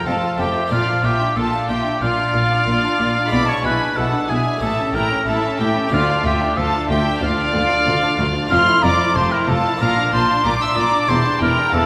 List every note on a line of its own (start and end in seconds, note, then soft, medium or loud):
0.00 0.65 A3 medium
0.00 0.66 C4 medium
0.00 0.67 F4 medium
0.06 0.14 F1 medium
0.06 0.14 F2 medium
0.06 0.36 F2 medium
0.06 0.21 A4 medium
0.06 0.39 A4 medium
0.06 0.39 F5 medium
0.06 0.38 A5 loud
0.22 0.39 F4 medium
0.38 0.46 F1 medium
0.38 0.68 F2 medium
0.38 0.47 F2 medium
0.38 0.71 G4 medium
0.38 0.55 A4 medium
0.38 0.71 E5 medium
0.38 0.71 G5 loud
0.55 0.70 F4 medium
0.66 3.25 A#3 medium
0.66 3.26 D4 medium
0.66 3.27 F4 medium
0.71 0.79 A#1 medium
0.71 1.00 A#2 medium
0.71 0.79 A#2 medium
0.71 0.86 F4 medium
0.71 1.06 F4 loud
0.71 1.03 D5 loud
0.71 1.03 F5 loud
0.87 1.04 D4 medium
1.03 1.11 A#1 medium
1.03 1.33 A#2 medium
1.03 1.12 A#2 medium
1.03 1.20 F4 medium
1.03 1.38 G4 medium
1.03 1.37 E5 medium
1.03 1.36 G5 loud
1.20 1.36 D4 medium
1.36 1.44 A#1 medium
1.36 1.44 A#2 medium
1.36 1.66 A#2 medium
1.36 1.52 F4 medium
1.36 1.68 A4 medium
1.36 1.68 F5 medium
1.36 1.69 A5 loud
1.53 1.69 D4 medium
1.69 1.77 A#1 medium
1.69 1.77 A#2 medium
1.69 1.99 A#2 medium
1.69 1.85 F4 medium
1.69 2.03 G4 medium
1.69 2.01 E5 loud
1.69 2.01 G5 loud
1.85 2.02 D4 medium
2.01 2.09 A#1 medium
2.01 2.09 A#2 medium
2.01 2.31 A#2 medium
2.01 3.31 F4 loud
2.01 2.17 F4 medium
2.01 3.29 D5 loud
2.01 3.29 F5 loud
2.18 2.34 D4 medium
2.33 2.41 A#1 medium
2.33 2.63 A#2 medium
2.33 2.42 A#2 medium
2.33 2.51 F4 medium
2.51 2.67 D4 medium
2.66 2.74 A#1 medium
2.66 2.75 A#2 medium
2.66 2.96 A#2 medium
2.66 2.82 F4 medium
2.83 2.99 D4 medium
2.99 3.07 A#1 medium
2.99 3.07 A#2 medium
2.99 3.29 A#2 medium
2.99 3.16 F4 medium
3.16 3.32 D4 medium
3.27 4.56 G#3 medium
3.27 4.56 D4 medium
3.27 4.57 E4 medium
3.31 3.39 B1 medium
3.31 3.61 B2 medium
3.31 3.40 B2 medium
3.31 3.47 E4 medium
3.31 3.50 D5 loud
3.31 3.48 B5 loud
3.31 3.48 D6 loud
3.48 3.65 D4 medium
3.48 3.64 C#5 loud
3.48 3.64 A5 loud
3.48 3.64 C#6 loud
3.64 3.72 B1 medium
3.64 3.93 B2 medium
3.64 3.73 B2 medium
3.64 3.81 E4 medium
3.64 3.98 B4 loud
3.64 3.96 G#5 medium
3.64 3.96 B5 loud
3.81 3.97 D4 medium
3.96 4.05 B1 medium
3.96 4.26 B2 medium
3.96 4.05 B2 medium
3.96 4.12 E4 medium
3.96 4.31 A4 loud
3.96 4.29 F#5 medium
3.96 4.30 A5 loud
4.13 4.29 D4 medium
4.29 4.37 B1 medium
4.29 4.59 B2 medium
4.29 4.38 B2 medium
4.29 4.46 E4 medium
4.29 4.61 G#4 medium
4.29 4.60 E5 medium
4.29 4.62 G#5 loud
4.46 4.62 D4 medium
4.57 5.85 A3 medium
4.57 5.86 C#4 medium
4.57 5.87 G4 medium
4.61 4.70 A1 medium
4.61 4.91 A2 medium
4.61 4.70 A2 medium
4.61 4.77 E4 medium
4.61 4.96 A4 loud
4.61 4.94 E5 loud
4.61 4.94 A5 loud
4.79 4.95 C#4 medium
4.94 5.02 A1 medium
4.94 5.24 A2 medium
4.94 5.03 A2 medium
4.94 5.11 E4 medium
4.94 5.27 A#4 loud
4.94 5.26 G5 medium
4.94 5.26 A#5 loud
5.11 5.27 C#4 medium
5.26 5.35 A1 medium
5.26 5.56 A2 medium
5.26 5.35 A2 medium
5.26 5.42 E4 medium
5.26 5.59 A4 medium
5.26 5.57 E5 loud
5.26 5.59 A5 loud
5.43 5.60 C#4 medium
5.59 5.67 A1 medium
5.59 5.88 A2 medium
5.59 5.67 A2 medium
5.59 5.76 E4 medium
5.59 5.95 G4 loud
5.59 5.91 E5 loud
5.59 5.92 G5 loud
5.76 5.92 C#4 medium
5.87 8.44 A3 medium
5.87 8.45 D4 medium
5.87 8.46 F4 medium
5.87 6.23 D5 loud
5.91 6.21 D2 medium
5.91 6.00 D2 medium
5.91 6.00 D2 loud
5.91 6.07 F4 medium
5.91 6.25 F4 loud
5.91 6.24 F5 loud
6.09 6.25 D4 medium
6.24 6.32 D2 medium
6.24 6.53 D2 medium
6.24 6.32 D2 medium
6.24 6.41 F4 medium
6.24 6.59 G4 loud
6.24 6.56 E5 loud
6.24 6.57 G5 loud
6.41 6.57 D4 medium
6.56 6.86 D2 medium
6.56 6.65 D2 medium
6.56 6.72 F4 medium
6.56 6.88 A4 loud
6.56 6.89 F5 loud
6.56 6.88 A5 loud
6.74 6.90 D4 medium
6.89 6.97 D2 medium
6.89 7.18 D2 medium
6.89 6.97 D2 medium
6.89 7.05 F4 medium
6.89 7.21 G4 medium
6.89 7.21 E5 loud
6.89 7.21 G5 loud
7.06 7.22 D4 medium
7.21 7.29 D2 medium
7.21 7.51 D2 medium
7.21 7.30 D2 medium
7.21 7.37 F4 medium
7.21 8.21 F4 loud
7.21 8.51 D5 loud
7.21 8.51 F5 loud
7.37 7.54 D4 medium
7.54 7.83 D2 medium
7.54 7.62 D2 medium
7.54 7.62 D2 loud
7.54 7.70 F4 medium
7.71 7.87 D4 medium
7.86 8.15 D2 medium
7.86 7.94 D2 medium
7.86 7.95 D2 medium
7.86 8.01 F4 medium
8.03 8.19 D4 medium
8.19 8.27 D2 loud
8.19 8.48 D2 medium
8.19 8.27 D2 medium
8.19 8.35 F4 medium
8.35 8.51 D4 medium
8.47 9.74 A3 medium
8.47 9.75 E4 medium
8.47 9.76 F4 medium
8.47 8.85 F5 loud
8.51 8.59 F1 loud
8.51 8.59 F2 loud
8.51 8.80 F2 medium
8.51 8.66 F4 medium
8.51 8.83 C6 loud
8.51 8.83 F6 loud
8.67 8.83 E4 medium
8.83 8.92 F1 medium
8.83 9.12 F2 medium
8.83 8.91 F2 medium
8.83 9.00 F4 medium
8.83 9.17 D5 loud
8.83 9.16 A#5 loud
8.83 9.15 D6 loud
9.00 9.16 E4 medium
9.15 9.24 F1 medium
9.15 9.23 F2 medium
9.15 9.45 F2 medium
9.15 9.31 F4 medium
9.15 9.33 C5 loud
9.15 9.32 A5 medium
9.15 9.32 C6 loud
9.31 9.48 E4 medium
9.31 9.49 A#4 loud
9.31 9.48 G5 medium
9.31 9.48 A#5 loud
9.48 9.56 F1 loud
9.48 9.56 F2 medium
9.48 9.77 F2 medium
9.48 9.64 F4 medium
9.48 9.80 A4 loud
9.48 9.80 F5 loud
9.48 9.80 A5 loud
9.64 9.80 E4 medium
9.76 11.03 A#3 medium
9.76 11.04 D4 medium
9.76 11.05 F4 medium
9.80 9.89 A#1 medium
9.80 9.88 A#2 medium
9.80 10.09 A#2 medium
9.80 9.95 F4 medium
9.80 10.12 A#4 loud
9.80 10.12 F5 loud
9.80 10.12 A#5 loud
9.97 10.13 D4 medium
10.12 10.21 A#1 medium
10.12 10.20 A#2 medium
10.12 10.42 A#2 medium
10.12 10.29 F4 medium
10.12 10.44 C5 loud
10.12 10.44 A5 loud
10.12 10.44 C6 loud
10.29 10.45 D4 medium
10.44 10.53 A#1 medium
10.44 10.52 A#2 loud
10.44 10.74 A#2 medium
10.44 10.60 F4 medium
10.44 10.61 D5 loud
10.44 10.51 A#5 loud
10.44 10.61 D6 loud
10.60 10.77 D4 medium
10.60 10.78 E5 loud
10.60 10.76 C6 loud
10.60 10.77 E6 loud
10.76 10.85 A#1 medium
10.76 10.85 A#2 medium
10.76 11.06 A#2 medium
10.76 10.93 F4 medium
10.76 11.10 D5 loud
10.76 11.09 A#5 loud
10.76 11.09 D6 loud
10.93 11.09 D4 medium
11.06 11.17 E1 medium
11.06 11.17 E2 medium
11.06 11.86 D4 medium
11.06 11.86 E4 medium
11.06 11.24 E4 medium
11.06 11.86 G4 medium
11.06 11.41 C5 loud
11.06 11.40 A5 loud
11.06 11.42 C6 loud
11.10 11.39 E2 medium
11.25 11.41 D4 medium
11.40 11.49 E1 medium
11.40 11.49 E2 medium
11.40 11.71 E2 medium
11.40 11.58 E4 medium
11.40 11.73 A#4 loud
11.40 11.73 G5 loud
11.40 11.73 A#5 loud
11.58 11.74 D4 medium
11.73 11.82 E1 medium
11.73 11.81 E2 medium
11.73 11.86 E2 medium
11.73 11.86 E4 medium
11.73 11.86 A4 loud
11.73 11.86 F5 loud
11.73 11.86 A5 loud